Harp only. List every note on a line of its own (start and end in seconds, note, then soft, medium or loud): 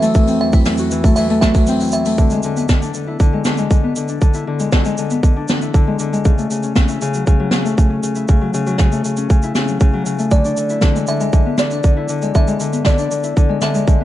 0.00 0.13 E3 loud
0.00 1.04 A3 loud
0.00 0.27 C4 medium
0.00 0.79 D4 medium
0.00 0.53 E4 medium
0.00 0.78 F#4 medium
0.14 0.39 E3 loud
0.28 1.68 C4 medium
0.41 0.65 E3 medium
0.53 3.07 E4 medium
0.66 0.90 E3 medium
0.79 3.23 F#4 medium
0.92 1.16 E3 loud
1.05 1.30 A3 medium
1.17 1.79 E3 loud
1.30 2.06 A3 loud
1.43 1.54 F#3 medium
1.55 2.23 F#3 medium
1.68 2.63 C4 loud
1.81 1.92 E3 medium
1.93 2.23 E3 medium
2.06 2.38 A3 medium
2.19 2.43 D3 medium
2.31 2.49 G#3 medium
2.44 2.68 D3 medium
2.57 3.83 B3 medium
2.70 2.93 D3 medium
2.82 4.09 D4 medium
2.95 3.19 D3 medium
3.07 4.34 E4 medium
3.20 3.44 D3 loud
3.33 3.51 G#3 medium
3.45 3.69 D3 loud
3.58 3.76 G#3 medium
3.71 3.95 D3 medium
3.84 5.11 B3 medium
3.96 4.21 D3 medium
4.09 5.36 D4 medium
4.22 4.46 D3 medium
4.34 5.61 E4 medium
4.47 4.71 D3 medium
4.60 4.78 G#3 medium
4.72 4.97 D3 loud
4.85 5.03 G#3 medium
4.98 5.22 D3 medium
5.11 8.22 B3 medium
5.24 5.48 D3 medium
5.36 6.31 D4 medium
5.49 5.73 D3 medium
5.62 6.88 E4 medium
5.75 5.99 D3 medium
5.87 6.05 G#3 medium
6.00 6.30 D3 medium
6.13 6.30 G#3 medium
6.25 6.50 C#3 medium
6.38 7.64 A3 medium
6.51 6.75 C#3 medium
6.63 7.89 C#4 medium
6.76 7.00 C#3 medium
6.89 8.15 E4 medium
7.02 7.26 C#3 loud
7.15 7.32 F#3 medium
7.27 7.51 C#3 medium
7.40 7.57 F#3 medium
7.52 7.76 C#3 loud
7.65 8.91 A3 medium
7.77 8.02 C#3 medium
7.90 9.17 C#4 medium
8.03 8.27 C#3 medium
8.15 9.43 E4 medium
8.28 8.53 C#3 medium
8.41 8.59 F#3 medium
8.54 8.78 C#3 loud
8.66 8.85 F#3 medium
8.79 9.04 C#3 loud
8.92 10.18 A3 medium
9.05 9.29 C#3 medium
9.18 10.38 C#4 medium
9.30 9.54 C#3 medium
9.43 10.70 E4 medium
9.56 9.80 C#3 medium
9.68 9.86 F#3 medium
9.81 10.05 C#3 medium
9.94 10.12 F#3 medium
10.06 10.37 C#3 medium
10.19 11.01 A3 medium
10.32 10.56 D3 medium
10.45 11.71 D4 medium
10.58 10.81 D3 medium
10.70 11.96 E4 medium
10.82 11.07 D3 loud
10.95 11.13 G#3 medium
11.08 11.32 D3 medium
11.20 11.39 G#3 medium
11.33 11.57 D3 loud
11.46 12.72 B3 medium
11.59 11.83 D3 medium
11.72 12.97 D4 medium
11.84 12.08 D3 medium
11.97 13.23 E4 medium
12.09 12.33 D3 medium
12.22 12.40 G#3 medium
12.35 12.59 D3 medium
12.48 12.66 G#3 medium
12.60 12.84 D3 medium
12.73 14.00 B3 medium
12.86 13.10 D3 medium
12.98 14.04 D4 medium
13.11 13.35 D3 medium
13.24 14.04 E4 medium
13.36 13.61 D3 medium
13.49 13.68 G#3 medium
13.62 13.87 D3 loud
13.75 13.93 G#3 medium
13.88 14.04 D3 medium
14.01 14.04 B3 medium